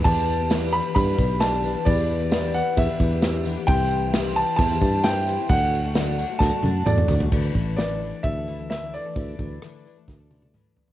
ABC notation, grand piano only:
X:1
M:4/4
L:1/16
Q:1/4=132
K:D
V:1 name="Grand piano"
a4 z2 b2 b4 a4 | d6 f2 e6 z2 | g6 a2 a4 g4 | f8 a4 d3 z |
z4 d4 e4 e2 d2- | d12 z4 |]